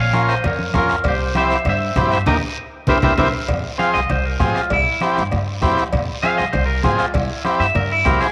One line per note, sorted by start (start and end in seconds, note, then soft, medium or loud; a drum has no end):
0.00 0.32 A#1 loud
0.00 0.27 C#5 medium
0.00 0.28 F5 medium
0.13 0.35 C#4 medium
0.13 0.35 F4 medium
0.13 0.35 A#4 medium
0.13 bombo rim medium
0.13 high conga medium
0.13 short guiro medium
0.29 0.43 C5 medium
0.29 0.47 D#5 medium
0.29 bombo rim medium
0.29 short guiro medium
0.44 0.69 F2 medium
0.44 0.74 A#4 medium
0.44 0.76 C#5 medium
0.44 bombo rim medium
0.44 cowbell medium
0.44 low conga medium
0.44 long guiro medium
0.59 high conga medium
0.74 0.99 F2 loud
0.74 0.96 C#4 medium
0.74 0.96 F4 medium
0.74 1.04 F4 medium
0.74 0.96 A#4 medium
0.74 bombo low medium
0.74 bombo rim medium
0.74 high conga medium
0.74 short guiro medium
0.78 1.05 A#4 medium
0.89 bombo rim medium
0.89 short guiro medium
1.04 1.54 C2 loud
1.04 1.35 G4 medium
1.04 bombo low medium
1.04 bombo rim medium
1.04 cowbell loud
1.04 long guiro medium
1.08 1.36 C5 medium
1.35 1.57 C4 medium
1.35 1.57 E4 medium
1.35 1.57 G4 medium
1.35 1.65 C5 medium
1.35 1.65 E5 medium
1.35 bombo rim medium
1.35 high conga medium
1.35 short guiro medium
1.50 bombo rim medium
1.50 short guiro medium
1.65 1.90 G2 medium
1.65 2.10 C5 medium
1.65 bombo rim medium
1.65 cowbell medium
1.65 low conga medium
1.65 long guiro medium
1.69 2.10 E5 medium
1.96 2.21 G2 loud
1.96 2.18 C4 medium
1.96 2.18 E4 medium
1.96 2.19 G4 medium
1.96 bombo low medium
1.96 bombo rim medium
1.96 high conga medium
1.96 low conga medium
1.96 low timbale medium
1.96 short guiro medium
2.11 2.17 C5 medium
2.11 2.18 E5 medium
2.11 bombo rim medium
2.11 short guiro medium
2.26 2.38 D#2 loud
2.26 2.37 A#3 loud
2.26 2.37 D#4 loud
2.26 2.37 G4 loud
2.26 2.37 A#4 loud
2.26 2.37 D#5 medium
2.26 bombo low loud
2.26 low conga medium
2.26 high timbale loud
2.26 long guiro loud
2.87 2.99 C2 loud
2.87 2.98 C4 loud
2.87 2.98 E4 medium
2.87 2.98 G4 loud
2.87 2.98 A#4 medium
2.87 2.99 C5 medium
2.87 2.98 E5 medium
2.87 bombo low medium
2.87 low conga medium
2.87 high timbale medium
2.87 long guiro loud
3.02 3.14 C2 medium
3.02 3.13 C4 loud
3.02 3.13 E4 loud
3.02 3.13 G4 medium
3.02 3.13 A#4 medium
3.02 3.13 C5 medium
3.02 3.13 E5 loud
3.02 bombo low medium
3.02 low conga medium
3.02 high timbale loud
3.02 long guiro medium
3.17 3.30 C2 medium
3.17 3.28 C4 medium
3.17 3.28 E4 medium
3.17 3.29 G4 loud
3.17 3.28 A#4 medium
3.17 3.28 C5 medium
3.17 3.28 E5 medium
3.17 bombo low loud
3.17 low conga medium
3.17 high timbale loud
3.17 long guiro loud
3.48 3.61 F2 medium
3.48 bombo low medium
3.48 bombo rim medium
3.48 cowbell loud
3.48 low conga medium
3.48 long guiro medium
3.78 4.00 C4 medium
3.78 4.01 F4 medium
3.78 4.01 G#4 medium
3.78 3.93 F5 medium
3.78 bombo rim medium
3.78 high conga medium
3.78 short guiro medium
3.94 4.07 C2 medium
3.94 4.09 D#5 medium
3.94 bombo rim medium
3.94 short guiro medium
4.09 4.34 C2 medium
4.09 4.25 C5 medium
4.09 bombo rim medium
4.09 cowbell medium
4.09 low conga medium
4.09 long guiro medium
4.25 4.41 A#4 medium
4.39 4.52 G#2 medium
4.39 4.61 C4 medium
4.39 4.62 F4 medium
4.39 4.62 G#4 medium
4.39 4.55 G#4 medium
4.39 bombo low medium
4.39 bombo rim medium
4.39 high conga medium
4.39 low timbale medium
4.39 short guiro medium
4.55 4.71 F4 medium
4.55 bombo rim medium
4.55 short guiro medium
4.70 4.83 C2 loud
4.70 5.02 E4 medium
4.70 bombo low medium
4.70 bombo rim medium
4.70 cowbell loud
4.70 long guiro medium
5.01 5.23 C4 medium
5.01 5.23 E4 medium
5.01 5.24 G4 medium
5.01 bombo rim medium
5.01 high conga medium
5.01 short guiro medium
5.16 5.30 G2 medium
5.16 bombo rim medium
5.16 short guiro medium
5.32 5.57 G2 medium
5.32 bombo rim medium
5.32 cowbell medium
5.32 low conga medium
5.32 long guiro medium
5.62 5.75 E2 medium
5.62 5.84 C4 medium
5.62 5.84 E4 medium
5.62 5.84 G4 medium
5.62 bombo low medium
5.62 bombo rim medium
5.62 high conga medium
5.62 low timbale medium
5.62 short guiro medium
5.78 bombo rim medium
5.78 short guiro medium
5.93 6.05 F2 medium
5.93 bombo low medium
5.93 bombo rim medium
5.93 cowbell loud
5.93 low conga medium
5.93 long guiro medium
6.23 6.45 C4 medium
6.23 6.45 F4 medium
6.23 6.45 G#4 medium
6.23 6.37 F5 loud
6.23 bombo rim medium
6.23 high conga medium
6.23 short guiro medium
6.38 6.51 C2 medium
6.38 6.53 D#5 medium
6.38 bombo rim medium
6.38 short guiro medium
6.53 6.79 C2 medium
6.53 6.65 C5 medium
6.53 bombo rim medium
6.53 cowbell medium
6.53 low conga medium
6.53 long guiro medium
6.66 6.83 A#4 medium
6.83 6.96 G#2 medium
6.83 7.05 C4 medium
6.83 7.06 F4 medium
6.83 6.98 G#4 medium
6.83 7.06 G#4 medium
6.83 bombo low medium
6.83 bombo rim medium
6.83 high conga medium
6.83 low conga medium
6.83 low timbale medium
6.83 short guiro medium
6.98 7.14 F4 medium
6.98 bombo rim medium
6.98 short guiro medium
7.14 7.27 C2 loud
7.14 7.44 E4 loud
7.14 bombo low medium
7.14 bombo rim medium
7.14 cowbell loud
7.14 low conga medium
7.14 long guiro medium
7.45 7.67 C4 medium
7.45 7.67 E4 medium
7.45 7.67 G4 medium
7.45 bombo rim medium
7.45 high conga medium
7.45 short guiro medium
7.60 7.72 G2 medium
7.60 7.75 E5 medium
7.60 bombo rim medium
7.60 short guiro medium
7.75 8.00 G2 medium
7.75 7.90 A#4 medium
7.75 bombo rim medium
7.75 cowbell medium
7.75 low conga medium
7.75 long guiro medium
7.92 8.06 E4 medium
8.05 8.18 C2 loud
8.05 8.27 C4 medium
8.05 8.27 E4 medium
8.05 8.27 G4 medium
8.05 8.20 A#4 medium
8.05 bombo low medium
8.05 bombo rim medium
8.05 high conga medium
8.05 low conga medium
8.05 low timbale medium
8.05 short guiro medium
8.21 8.32 G#4 medium
8.21 bombo rim medium
8.21 short guiro medium